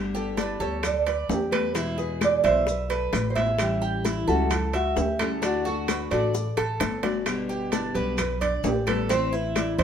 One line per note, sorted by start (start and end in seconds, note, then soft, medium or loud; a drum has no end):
0.00 0.54 G1 medium
0.00 0.59 D3 medium
0.00 0.60 G3 medium
0.00 0.61 B3 medium
0.00 0.59 G4 medium
0.15 0.37 G4 medium
0.15 0.41 A4 medium
0.15 high conga soft
0.15 maracas soft
0.37 0.60 D4 medium
0.37 0.61 B4 medium
0.37 high bongo medium
0.37 high conga medium
0.37 high timbale medium
0.37 maracas medium
0.60 1.25 D2 medium
0.60 0.82 G3 medium
0.60 0.83 B3 medium
0.60 0.82 G4 medium
0.60 1.05 A4 medium
0.60 0.83 C#5 medium
0.60 high conga soft
0.60 maracas soft
0.83 1.07 D5 medium
0.83 muted nylon-string guitar stroke medium
0.83 high bongo medium
0.83 high conga soft
0.83 low conga medium
0.83 high timbale medium
0.83 claves medium
0.83 maracas medium
1.06 1.29 B4 medium
1.06 1.51 D5 medium
1.06 high conga soft
1.06 high timbale medium
1.06 maracas soft
1.29 2.38 E2 medium
1.29 high bongo medium
1.29 low bongo medium
1.29 high conga medium
1.29 low timbale medium
1.29 maracas medium
1.33 1.55 G4 medium
1.51 1.75 G3 soft
1.51 1.75 B3 medium
1.51 1.74 G4 medium
1.51 1.76 A4 loud
1.51 1.74 B4 medium
1.51 high conga medium
1.51 high timbale loud
1.51 claves medium
1.51 maracas soft
1.74 2.43 B2 medium
1.74 2.46 E3 medium
1.74 2.43 G#3 medium
1.74 2.43 B3 medium
1.74 1.97 E4 medium
1.74 2.43 E4 medium
1.74 1.99 G#4 medium
1.74 high bongo medium
1.74 high timbale medium
1.74 maracas medium
1.98 2.43 G#4 medium
1.98 2.21 B4 medium
1.98 high bongo soft
1.98 high conga soft
1.98 maracas soft
2.21 2.45 D5 loud
2.21 high bongo medium
2.21 high conga loud
2.21 high timbale medium
2.21 claves medium
2.21 maracas medium
2.43 3.09 B1 medium
2.43 2.66 E3 medium
2.43 2.66 G#3 medium
2.43 2.67 B3 medium
2.43 2.66 E4 medium
2.43 2.67 C5 medium
2.43 2.89 E5 medium
2.43 high conga soft
2.43 high timbale medium
2.43 maracas soft
2.67 2.91 B4 medium
2.67 muted nylon-string guitar stroke medium
2.67 high bongo medium
2.67 high conga soft
2.67 maracas medium
2.90 3.15 A4 medium
2.90 3.35 B4 medium
2.90 high bongo soft
2.90 high conga soft
2.90 high timbale medium
2.90 maracas soft
3.13 4.22 A1 medium
3.13 3.29 B4 medium
3.13 high bongo medium
3.13 low bongo medium
3.13 high conga medium
3.13 high timbale loud
3.13 claves medium
3.13 maracas medium
3.30 3.44 C5 medium
3.35 3.58 E3 soft
3.35 3.59 G#3 soft
3.35 3.59 B3 soft
3.35 3.58 E4 medium
3.35 3.80 E5 medium
3.35 high bongo soft
3.35 high conga medium
3.35 high timbale medium
3.35 maracas soft
3.46 3.60 G#4 medium
3.59 4.27 E3 medium
3.59 4.28 G3 medium
3.59 4.27 C#4 medium
3.59 4.26 E4 medium
3.59 4.25 G4 medium
3.59 high bongo medium
3.59 high conga soft
3.59 high timbale medium
3.59 claves medium
3.59 maracas medium
3.82 4.04 G4 medium
3.82 high conga soft
3.82 maracas soft
4.05 4.27 E4 medium
4.05 high bongo medium
4.05 high conga medium
4.05 high timbale medium
4.05 maracas medium
4.27 4.93 C#2 medium
4.27 4.50 G3 medium
4.27 4.50 C#4 medium
4.27 4.50 E4 medium
4.27 4.54 F#4 medium
4.27 4.72 A4 medium
4.27 high conga soft
4.27 maracas soft
4.50 4.75 E4 medium
4.50 muted nylon-string guitar stroke medium
4.50 high bongo medium
4.50 high conga soft
4.50 low conga medium
4.50 high timbale medium
4.50 claves medium
4.50 maracas medium
4.73 4.97 F#4 medium
4.73 5.18 E5 medium
4.73 high conga soft
4.73 high timbale medium
4.73 maracas soft
4.96 6.05 D2 medium
4.96 5.20 G4 medium
4.96 high bongo medium
4.96 low bongo medium
4.96 high conga medium
4.96 low timbale medium
4.96 maracas medium
5.19 5.42 G3 soft
5.19 5.42 C#4 medium
5.19 5.42 E4 medium
5.19 5.43 G#4 loud
5.19 5.42 A4 medium
5.19 high conga medium
5.19 high timbale loud
5.19 claves medium
5.19 maracas soft
5.42 6.10 D3 medium
5.42 6.11 A3 medium
5.42 5.65 D4 medium
5.42 6.12 D4 medium
5.42 6.09 F#4 medium
5.42 5.67 F#4 medium
5.42 high bongo medium
5.42 high conga soft
5.42 high timbale medium
5.42 maracas medium
5.65 6.10 F#4 medium
5.65 5.91 A4 medium
5.65 high bongo soft
5.65 high conga soft
5.65 maracas soft
5.88 6.12 B4 medium
5.88 high bongo medium
5.88 high conga medium
5.88 high timbale medium
5.88 claves medium
5.88 maracas medium
6.11 6.54 A1 medium
6.11 6.33 A3 medium
6.11 6.34 D4 medium
6.11 6.33 F#4 medium
6.11 6.55 A4 medium
6.11 6.56 D5 medium
6.11 high conga soft
6.11 high timbale medium
6.11 maracas soft
6.34 muted nylon-string guitar stroke medium
6.34 high bongo medium
6.34 high conga soft
6.34 maracas medium
6.57 6.79 A1 medium
6.57 7.02 A4 medium
6.57 high bongo medium
6.57 high conga soft
6.57 high timbale medium
6.57 maracas soft
6.80 7.89 G1 medium
6.80 low bongo medium
6.80 high conga medium
6.80 high timbale medium
6.80 claves medium
6.80 maracas medium
7.03 7.26 A3 soft
7.03 7.26 D4 medium
7.03 7.25 F#4 medium
7.03 7.48 D5 medium
7.03 low bongo medium
7.03 high conga medium
7.03 high timbale medium
7.03 maracas soft
7.26 7.94 B2 medium
7.26 7.95 D3 medium
7.26 7.95 G3 medium
7.26 7.94 B3 medium
7.26 7.93 G4 medium
7.26 high bongo medium
7.26 high conga soft
7.26 high timbale medium
7.26 claves medium
7.26 maracas medium
7.49 7.72 G4 medium
7.49 high conga soft
7.49 maracas soft
7.72 7.95 D4 medium
7.72 high bongo medium
7.72 high conga medium
7.72 high timbale medium
7.72 maracas medium
7.94 8.60 B1 medium
7.94 8.18 D3 medium
7.94 8.18 G3 medium
7.94 8.18 B3 medium
7.94 8.17 G4 medium
7.94 8.40 B4 medium
7.94 high conga soft
7.94 maracas soft
8.18 8.42 B4 medium
8.18 muted nylon-string guitar stroke medium
8.18 high bongo medium
8.18 high conga soft
8.18 low conga medium
8.18 high timbale medium
8.18 claves medium
8.18 maracas medium
8.41 8.64 D4 medium
8.41 8.86 D5 medium
8.41 high conga soft
8.41 low conga medium
8.41 high timbale medium
8.41 maracas soft
8.64 9.72 A1 medium
8.64 8.88 G4 medium
8.64 high bongo medium
8.64 low bongo medium
8.64 high conga medium
8.64 low timbale medium
8.64 maracas medium
8.87 9.09 D3 medium
8.87 9.10 G3 medium
8.87 9.10 B3 medium
8.87 9.09 G4 medium
8.87 9.09 A4 medium
8.87 9.10 B4 loud
8.87 high conga medium
8.87 high timbale loud
8.87 claves medium
8.87 maracas soft
9.09 9.83 E3 medium
9.09 9.78 A3 medium
9.09 9.32 C4 medium
9.09 9.78 C4 medium
9.09 9.78 E4 medium
9.09 9.33 C5 medium
9.09 high bongo medium
9.09 high conga soft
9.09 high timbale medium
9.09 maracas medium
9.33 9.77 E4 medium
9.33 9.58 B4 medium
9.33 high bongo soft
9.33 high conga soft
9.33 maracas soft
9.56 9.78 D5 medium
9.56 high bongo medium
9.56 high conga loud
9.56 high timbale medium
9.56 claves medium
9.56 maracas medium
9.78 9.83 E2 loud
9.78 9.83 C4 medium
9.78 9.83 E4 medium
9.78 9.83 C5 medium
9.78 9.83 D#5 medium
9.78 high conga soft
9.78 high timbale medium
9.78 maracas soft